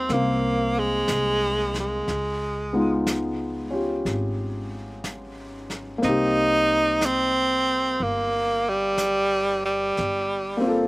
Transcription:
Already playing: A#3 C4 D#4 G4
0.09 C2 A#3, brush sweep, snare
0.14 C4
0.79 G#3
1.08 C2, brush sweep, snare, hi-hat pedal
1.74 snare
1.80 G#3
2.08 C#2, brush sweep, snare
2.73 G#3 B3 D#4 F4
3.07 brush sweep, snare, hi-hat pedal
3.71 C#4 F4 G4
4.05 G#1, brush sweep, snare
5.04 brush sweep, snare, hi-hat pedal
5.70 snare
5.98 A#3 C4
6.02 C2 D#4, brush sweep, snare
6.09 G4
7.01 brush sweep, snare, hi-hat pedal
7.06 C4
7.99 G1 A#3, brush sweep
8.69 G3
8.98 brush sweep, snare, hi-hat pedal
9.65 G3
9.97 G1, brush sweep, snare
10.57 A#3 C4
10.64 F4
10.68 A4

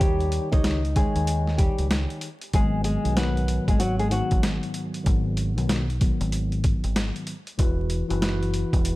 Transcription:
Already playing: D#2
0.00 D#3 G3 D#4 G4 C#5, kick, closed hi-hat
0.20 closed hi-hat
0.32 closed hi-hat
0.51 C#2 D#3 D#4 G4 C#5 D#5, kick, closed hi-hat
0.64 snare, closed hi-hat
0.85 closed hi-hat
0.95 D#3 G#3 D#4 G#4 C#5 G5, kick, closed hi-hat
1.16 D#2, closed hi-hat
1.27 closed hi-hat
1.47 snare
1.58 G3 G4, kick, closed hi-hat
1.78 C#2, closed hi-hat
1.91 snare, closed hi-hat
2.10 closed hi-hat
2.21 closed hi-hat
2.41 closed hi-hat
2.53 G#1 G#2 D#3 F#3 G#3 B3 G#4, kick, closed hi-hat
2.84 G#3 G#4, closed hi-hat
3.03 B1 G#2 D#3 F#3 B3, closed hi-hat
3.14 G#2 D#3 F#3 B3 B4, snare, closed hi-hat
3.37 closed hi-hat
3.48 closed hi-hat
3.68 G#1 G#3 G#4, kick, closed hi-hat
3.79 F#3 F#4, closed hi-hat
3.99 G#3 G#4, closed hi-hat
4.09 G#2 D#3 F#3 B3 F#4, closed hi-hat
4.31 G#1, kick, closed hi-hat
4.43 snare, closed hi-hat
4.63 closed hi-hat
4.74 closed hi-hat
4.94 closed hi-hat
5.03 G#1 G#2 D#3 F#3 B3, kick, closed hi-hat
5.37 closed hi-hat
5.56 B1 G#2 D#3 F#3 B3, closed hi-hat
5.69 snare, closed hi-hat
5.90 closed hi-hat
6.00 G#2 D#3 F#3 B3, kick, closed hi-hat
6.21 G#1, closed hi-hat
6.32 closed hi-hat
6.52 closed hi-hat
6.64 kick, closed hi-hat
6.84 G#1, closed hi-hat
6.96 snare, closed hi-hat
7.16 closed hi-hat
7.27 closed hi-hat
7.47 closed hi-hat
7.58 E1 E3 E4 F#4 B4, kick, closed hi-hat
7.90 closed hi-hat
8.08 F#1 E3 E4 F#4 B4, closed hi-hat
8.21 E3 E4 F#4 B4, snare, closed hi-hat
8.43 closed hi-hat
8.54 closed hi-hat
8.73 E1, kick, closed hi-hat
8.85 closed hi-hat

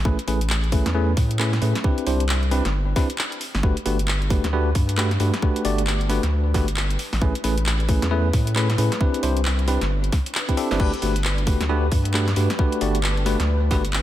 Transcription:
Already playing: C#4
0.05 A1 A3 C#4 E4 G#4 B4, kick
0.19 closed hi-hat
0.28 A1 A3 C#4 E4 G#4 B4, open hi-hat
0.41 closed hi-hat
0.50 clap
0.55 F#4
0.64 closed hi-hat
0.72 A3 C#4 E4 G#4 B4, kick, open hi-hat
0.86 E2, snare, closed hi-hat
0.95 A3 C#4 E4 G#4 B4
1.17 A2, kick, open hi-hat
1.31 closed hi-hat
1.39 A3 C#4 E4 G#4 B4, clap
1.53 snare, closed hi-hat
1.62 A2 A3 C#4 E4 G#4 B4, open hi-hat
1.75 snare, closed hi-hat
1.84 C4 D4 E4 G4 B4, kick
1.98 closed hi-hat
2.07 C2 C4 D4 E4 G4 C5, open hi-hat
2.20 closed hi-hat
2.29 clap
2.43 G4, closed hi-hat
2.51 C4 D4 E4 G4 B4, open hi-hat
2.65 G1 B4, snare, closed hi-hat
2.96 C4 D4 E4 G4 B4, kick, snare, open hi-hat
3.10 closed hi-hat
3.18 clap
3.32 closed hi-hat
3.41 open hi-hat
3.55 G1, snare, open hi-hat
3.63 G1 A3 D4 F#4 G4 B4, kick
3.77 closed hi-hat
3.86 G1 A3 D4 F#4 G4 B4, open hi-hat
3.99 closed hi-hat
4.08 clap
4.22 closed hi-hat
4.30 A3 D4 F#4 G4 B4, kick, open hi-hat
4.44 D2, snare, closed hi-hat
4.53 A3 D4 F#4 G4 B4
4.75 G2, kick, open hi-hat
4.89 closed hi-hat
4.98 A3 D4 F#4 G4 B4, clap
5.11 snare, closed hi-hat
5.20 G2 A3 D4 F#4 G4 B4, open hi-hat
5.34 snare, closed hi-hat
5.42 A3 D4 F#4 G4 B4, kick
5.56 closed hi-hat
5.65 G1 A3 D4 F#4 G4 D5, open hi-hat
5.78 closed hi-hat
5.87 clap
6.01 closed hi-hat
6.10 A3 D4 F#4 G4 B4, open hi-hat
6.23 D2, snare, closed hi-hat
6.54 G1 A3 D4 F#4 G4 B4, kick, snare, open hi-hat
6.68 closed hi-hat
6.77 clap
6.90 closed hi-hat
6.99 C#4, open hi-hat
7.13 A1, snare, open hi-hat
7.22 A1 A3 C#4 E4 G#4 B4, kick
7.35 closed hi-hat
7.44 A1 A3 C#4 E4 G#4 B4, open hi-hat
7.58 closed hi-hat
7.66 clap
7.73 F#4
7.80 closed hi-hat
7.89 A3 C#4 E4 G#4 B4, kick, open hi-hat
8.02 E2, snare, closed hi-hat
8.11 A3 C#4 E4 G#4 B4
8.33 A2, kick, open hi-hat
8.47 closed hi-hat
8.56 A3 C#4 E4 G#4 B4, clap
8.70 snare, closed hi-hat
8.78 A2 A3 C#4 E4 G#4 B4, open hi-hat
8.92 snare, closed hi-hat
9.01 C4 D4 E4 G4 B4, kick
9.14 closed hi-hat
9.23 C2 C4 D4 E4 G4 C5, open hi-hat
9.37 closed hi-hat
9.45 clap
9.59 closed hi-hat
9.63 G4
9.68 C4 D4 E4 G4 B4, open hi-hat
9.81 G1, snare, closed hi-hat
10.04 closed hi-hat
10.12 kick, snare, open hi-hat
10.26 closed hi-hat
10.35 clap
10.49 C4 D4 E4 G4 B4, kick, closed hi-hat
10.57 C4 D4 E4 G4 A4, open hi-hat
10.71 G1 C4 D4 E4 G4 B4, snare, open hi-hat
10.80 G1 A3 D4 F#4 G4 B4, kick, crash
10.94 closed hi-hat
11.02 G1 A3 D4 F#4 G4 B4, open hi-hat
11.16 closed hi-hat
11.24 clap
11.38 closed hi-hat
11.47 A3 D4 F#4 G4 B4, kick, open hi-hat
11.61 D2, snare, closed hi-hat
11.69 A3 D4 F#4 G4 B4
11.92 G2, kick, open hi-hat
12.05 closed hi-hat
12.14 A3 D4 F#4 G4 B4, clap
12.28 snare, closed hi-hat
12.36 G2 A3 D4 F#4 G4 B4, open hi-hat
12.50 snare, closed hi-hat
12.59 A3 D4 F#4 G4 B4, kick
12.72 closed hi-hat
12.81 G1 A3 D4 F#4 G4 D5, open hi-hat
12.95 closed hi-hat
13.03 clap
13.17 closed hi-hat
13.26 A3 D4 F#4 G4 B4, open hi-hat
13.40 D2, snare, closed hi-hat
13.71 G1 A3 D4 F#4 G4 B4, kick, snare, open hi-hat
13.85 closed hi-hat
13.93 clap

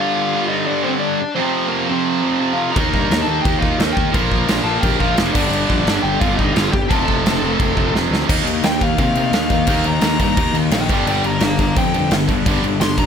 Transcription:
Already playing: G2 D3 G3
0.00 F4 F5
0.34 G2 D3 G3
0.48 D#5
0.52 D#4
0.66 G2 D3 D4 D5
0.70 G3
0.83 D3 G3 C5
0.87 G2 C4
1.00 D4 D5
1.34 F2 C3 C4 C5
1.39 C3 F3
1.69 A#4
1.73 A#3
1.86 F3 C4 C5
1.91 F2 C3
2.22 F2 C3 F3
2.39 F2 C3 F3
2.53 F5
2.58 F4
2.71 D#3 A#5
2.76 D#2 A#3 D#4 A#4, kick, crash
2.94 G2, kick
3.10 D#2, snare, crash
3.22 A5
3.27 D#2 D#3 A#3 D#4 A4
3.41 G4 G5
3.45 D#2, kick, crash
3.59 D#2 A#3 D#4 F4 F5, kick
3.64 D#3
3.78 D#2 D#3 A#3 D#4, snare, crash
3.93 G5, kick
3.97 D#2 G4
4.08 A#5
4.13 A#1 A#2 F3 A#3 A#4, kick, crash
4.17 A#3
4.32 A#1, kick
4.47 A#1, snare, crash
4.64 A#1 F3 A#3 A4 A5
4.69 A#2
4.80 A#1 G4 G5, kick, crash
4.99 A#1 A#2 F3 A#3 F4 F5, kick
5.16 F1 A#2 F3 A#3, snare, crash
5.33 G1 G2 D3 G3 D4 D5, kick, crash
5.38 G3
5.50 G1, crash
5.70 A#1, kick
5.85 G1 G2 D3 G3, snare, crash
6.03 G1 G4 G5
6.20 G1 G2 D3 G3 F4 F5, kick, crash
6.36 G1 G2 D3 G3 D#4 D#5, kick
6.53 G1 F4 F5, snare, crash
6.71 G1 G4 G5, kick
6.88 F1 F2 C3 F3 A4 A5, kick, crash
7.08 F1, kick
7.24 F1, snare, crash
7.41 F1 C3 F3
7.45 F2
7.60 F1, kick, crash
7.75 F1 F2 C3 F3, kick
7.92 F1 F2 C3 F3, snare
8.10 D2, snare
8.26 D#2 D#3 A#3 D#4, kick, crash
8.44 D#2 D#3 A#3, crash
8.63 D#2 D#3 A#3 G5, snare, crash
8.81 D#3 A#3 F5, kick, crash
8.98 C3 D#3 A#3 F5, kick, crash
9.15 D#3 A#3, crash
9.31 D#2 D#3 A#3, snare, crash
9.50 D#2 D#3 A#3 F5, kick, crash
9.66 D#2 D#3 A#3 D#4, kick, crash
9.84 D#2 D#3 A#3 A#5, crash
10.01 D#2 D#3 A#3, snare, crash
10.19 G2 D#3 A#3 A#5, kick, crash
10.37 D#2 D#3 A#3, kick, crash
10.53 D#2 D#3 A#3, crash
10.71 A#1 D#3 A#3 D#5 G5, snare, crash
10.88 G1 G2 D3 G3, kick, crash
10.93 D5 G5
11.06 G1 G2 D3 G3 D5 G5, crash
11.23 G1 G2 D3 F5 A#5, crash
11.40 G1 G2 D3 F5, snare, crash
11.44 A#5
11.59 G2 D3 F5 A#5, kick, crash
11.76 F2 G2 D3 G5, kick, crash
11.94 G2 D3, crash
12.10 G1 G2 D3, snare, crash
12.27 G1 G2 D3 G3, kick, crash
12.31 D3
12.46 G1 G2 D3 G3, kick, crash
12.62 G1 G2 D3, crash
12.80 G1 G2 D3 C6, snare, crash
12.97 A#1 G2 D3 A#5, kick, crash

